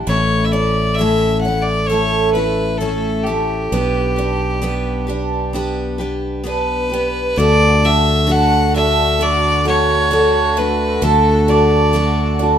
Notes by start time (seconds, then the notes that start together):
Already playing: A3 D4 G4
0.07 A1 A2 E3 A3 C#4 E4 A4 C#5
0.45 E5
0.52 C#4 E4 A4 D5
0.95 A3 E5
0.99 A2 A3 C#4 E4 A4
1.41 F#5
1.45 C#4 E4 A4
1.62 D5
1.86 A4 C#5
1.91 A3 C#4 E4 A4
2.33 A3 E4 A4 B4
2.38 C#4
2.78 A2 A3 C#4 A4
2.82 E4 A4
3.24 A3 G4 A4
3.28 C#4 E4
3.72 B1 B3 D4 G4 B4
4.16 D4 G4 B4
4.62 B3 D4 G4 B4
5.07 D4 G4 B4
5.53 B3 D4 G4 B4
5.98 B3 D4 G4 B4
6.44 B3 D4 G4 B4
6.90 B3 D4 G4 B4
7.36 D2 D3 A3 D4 F#4 A4 D5
7.82 D4 F#4 A4 E5
8.27 D3 A3 D4 F#4 A4
8.32 F#5
8.74 D4 F#4 A4 E5
9.19 D3 D4 F#4 A4 D5
9.65 A3 D4 F#4 A4 C#5
10.11 D3 D4 F#4 A4
10.57 A3 D4 F#4 A4 B4
11.02 D2 D3 A3 D4 F#4 A4
11.48 D4 F#4 A4 D5
11.93 D3 A3 D4 F#4 A4
12.39 D4 F#4 A4
12.43 D4